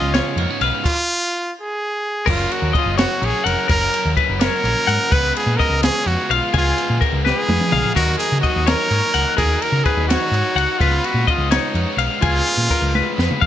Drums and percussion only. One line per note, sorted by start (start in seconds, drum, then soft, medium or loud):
0.14 snare loud
0.14 ride medium
0.38 ride medium
0.61 ride medium
0.85 kick loud
0.85 crash loud
2.27 kick loud
2.27 crash loud
2.51 ride medium
2.75 kick medium
2.75 ride medium
2.98 snare loud
2.98 ride medium
3.23 ride medium
3.46 ride medium
3.69 kick loud
3.69 ride loud
3.94 ride medium
4.17 kick medium
4.17 ride medium
4.41 snare loud
4.41 ride loud
4.65 ride medium
4.89 ride medium
5.12 kick loud
5.12 ride loud
5.36 ride medium
5.60 kick medium
5.60 ride medium
5.83 snare loud
5.83 ride medium
6.07 ride medium
6.31 ride medium
6.54 kick loud
6.54 ride loud
6.78 ride medium
7.02 kick medium
7.02 ride medium
7.26 snare medium
7.49 high tom medium
7.61 mid tom medium
7.72 mid tom loud
7.85 floor tom medium
7.96 kick loud
7.96 crash loud
8.20 ride medium
8.44 kick medium
8.44 ride medium
8.67 snare loud
8.67 ride loud
8.91 ride medium
9.14 ride medium
9.38 kick loud
9.38 ride loud
9.62 ride medium
9.85 kick medium
9.85 ride medium
10.10 snare loud
10.10 ride loud
10.34 ride medium
10.58 ride medium
10.81 kick loud
10.81 ride loud
11.04 ride medium
11.28 kick medium
11.28 ride medium
11.51 snare loud
11.51 ride loud
11.75 ride medium
11.99 ride medium
12.22 kick loud
12.22 ride loud
12.47 ride medium
12.71 kick medium
12.71 ride medium
12.95 high tom medium
13.19 snare medium
13.31 mid tom medium
13.42 kick loud